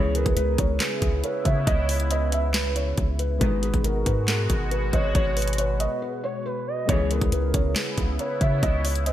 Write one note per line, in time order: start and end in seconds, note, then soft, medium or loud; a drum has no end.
0.00 0.12 C#2 loud
0.00 0.25 C#2 loud
0.00 0.12 B2 medium
0.00 3.38 C#3 medium
0.00 0.12 E3 loud
0.00 3.35 G#3 medium
0.00 3.36 B3 medium
0.00 3.38 B3 medium
0.00 3.37 C#4 medium
0.00 3.38 E4 medium
0.00 3.38 G#4 medium
0.00 0.12 C#5 loud
0.15 0.33 A#4 medium
0.15 0.35 B4 medium
0.15 closed hi-hat medium
0.26 0.36 C#2 loud
0.26 kick loud
0.26 closed hi-hat medium
0.36 0.58 C#2 loud
0.36 0.77 A#4 medium
0.36 0.55 B4 loud
0.36 closed hi-hat medium
0.58 0.79 C#2 loud
0.58 0.77 C#5 medium
0.58 kick loud
0.58 closed hi-hat medium
0.80 1.21 G#4 loud
0.80 1.21 B4 medium
0.80 snare loud
0.80 clap medium
0.80 closed hi-hat medium
1.02 1.23 C#2 loud
1.02 kick loud
1.02 closed hi-hat medium
1.24 1.45 B4 medium
1.24 1.42 C#5 medium
1.24 closed hi-hat medium
1.45 1.66 C#3 loud
1.45 1.66 C#5 medium
1.45 1.64 E5 medium
1.45 kick loud
1.45 closed hi-hat medium
1.67 2.94 C#2 loud
1.67 2.08 C#5 loud
1.67 1.85 D#5 loud
1.67 kick loud
1.67 closed hi-hat medium
1.89 2.07 C#5 medium
1.89 closed hi-hat medium
1.89 open hi-hat medium
2.00 closed hi-hat medium
2.11 2.94 B4 medium
2.11 2.29 D#5 medium
2.11 closed hi-hat medium
2.32 2.51 E5 medium
2.32 closed hi-hat medium
2.54 2.73 B4 medium
2.54 snare loud
2.54 clap medium
2.54 closed hi-hat medium
2.76 3.17 C#5 medium
2.76 closed hi-hat medium
2.98 3.39 C#2 loud
2.98 kick loud
2.98 closed hi-hat medium
3.19 3.38 B4 medium
3.19 closed hi-hat medium
3.38 3.72 G#1 loud
3.38 3.59 B1 loud
3.38 3.59 G#2 medium
3.38 6.85 B2 medium
3.38 3.59 D#3 loud
3.38 6.83 G#3 medium
3.38 6.85 G#3 medium
3.38 6.84 B3 medium
3.38 6.85 D#4 medium
3.38 6.85 F#4 medium
3.38 3.59 B4 loud
3.38 kick loud
3.38 closed hi-hat medium
3.43 6.86 F#4 medium
3.43 6.87 G#4 medium
3.62 3.81 G#4 medium
3.62 3.83 B4 medium
3.62 closed hi-hat medium
3.74 3.84 G#1 loud
3.74 kick loud
3.74 closed hi-hat medium
3.84 4.05 G#1 loud
3.84 4.25 A#4 medium
3.84 4.03 A#4 medium
3.84 closed hi-hat medium
4.06 4.48 G#2 loud
4.06 4.25 B4 medium
4.06 kick loud
4.06 closed hi-hat medium
4.28 4.69 G#4 medium
4.28 4.69 A#4 medium
4.28 snare loud
4.28 clap medium
4.28 closed hi-hat medium
4.50 4.91 G#1 loud
4.50 kick loud
4.50 closed hi-hat medium
4.71 4.90 B4 medium
4.71 4.92 B4 medium
4.71 closed hi-hat medium
4.93 5.14 G#1 loud
4.93 5.14 C#5 loud
4.93 5.12 D#5 medium
4.93 kick loud
4.93 closed hi-hat medium
5.15 5.88 G#1 loud
5.15 5.33 C#5 loud
5.15 5.56 C#5 loud
5.15 kick loud
5.15 closed hi-hat medium
5.36 5.55 B4 medium
5.36 closed hi-hat medium
5.36 open hi-hat medium
5.42 closed hi-hat medium
5.48 closed hi-hat medium
5.53 closed hi-hat medium
5.58 6.20 B4 medium
5.58 5.77 C#5 medium
5.58 closed hi-hat medium
5.80 5.98 D#5 medium
5.80 closed hi-hat medium
6.02 6.20 B4 medium
6.24 6.42 C#5 medium
6.24 6.44 C#5 medium
6.45 6.66 B4 medium
6.45 6.86 B4 medium
6.67 6.88 D#5 medium
6.86 7.07 C#2 medium
6.86 7.20 C#2 loud
6.86 7.07 B2 loud
6.86 9.13 C#3 medium
6.86 7.07 E3 loud
6.86 9.13 G#3 medium
6.86 9.13 B3 medium
6.86 9.13 C#4 medium
6.86 9.13 E4 medium
6.86 7.07 C#5 loud
6.86 kick loud
6.86 closed hi-hat medium
6.90 9.13 E4 medium
6.90 9.13 G#4 medium
7.10 7.29 A#4 medium
7.10 7.31 B4 medium
7.10 closed hi-hat medium
7.21 7.32 C#2 loud
7.21 kick loud
7.21 closed hi-hat medium
7.32 7.53 C#2 loud
7.32 7.73 A#4 medium
7.32 7.51 B4 medium
7.32 closed hi-hat medium
7.54 7.75 C#2 loud
7.54 7.73 C#5 medium
7.54 kick loud
7.54 closed hi-hat medium
7.76 8.17 G#4 medium
7.76 8.17 B4 medium
7.76 snare loud
7.76 clap medium
7.76 closed hi-hat medium
7.98 8.18 C#2 loud
7.98 kick loud
7.98 closed hi-hat medium
8.19 8.40 B4 medium
8.19 8.38 C#5 medium
8.19 closed hi-hat medium
8.41 8.62 C#3 loud
8.41 8.62 C#5 medium
8.41 8.59 E5 medium
8.41 kick loud
8.41 closed hi-hat medium
8.62 9.13 C#2 loud
8.62 9.04 C#5 loud
8.62 8.81 D#5 loud
8.62 kick loud
8.62 closed hi-hat medium
8.85 9.03 C#5 medium
8.85 closed hi-hat medium
8.85 open hi-hat medium
8.95 closed hi-hat medium
9.06 9.13 B4 loud
9.06 9.13 D#5 medium
9.06 closed hi-hat medium